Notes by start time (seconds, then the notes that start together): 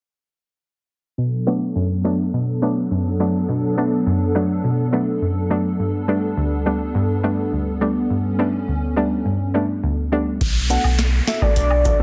1.18 B2 F#3 B3 D4 A4
1.47 F#3 A3 B3 D4
1.76 F#2
2.04 F#3 A3 B3 D4
2.34 B2
2.62 F#3 A3 B3 D4
2.91 F#2
3.20 F#3 A3 B3 D4
3.49 B2
3.77 F#3 A3 B3 D4
4.06 F#2
4.35 F#3 A3 B3 D4
4.64 B2
4.92 F#3 A3 B3 D4
5.22 F#2
5.50 F#3 A3 B3 D4
5.79 G2 G3 B3 D4
6.08 G3 A3 B3 D4
6.37 D2
6.66 G3 A3 B3 D4
6.95 G2
7.23 G3 A3 B3 D4
7.53 D2
7.81 G3 A3 B3 D4
8.10 G2 C#4
8.39 G3 A3 B3 D4
8.68 D2
8.96 G3 A3 B3 D4
9.26 G2
9.54 G3 A3 B3 D4
9.83 D2
10.12 G3 A3 B3 D4
10.41 B1, kick, closed hi-hat, crash, downlifter
10.70 A3 B3 D4 F#4 A4 F#5, closed hi-hat, cabasa
10.84 B1, high woodblock
10.99 snare, closed hi-hat
11.27 F#4 A4 E5, snare, closed hi-hat, cabasa
11.42 A3 B3 D4 F#4 A4 D5, kick, high woodblock
11.56 B1 D5, closed hi-hat
11.71 high woodblock
11.85 F#4 A4, kick, closed hi-hat, cabasa
11.99 A1 A3 B3 D4 F#4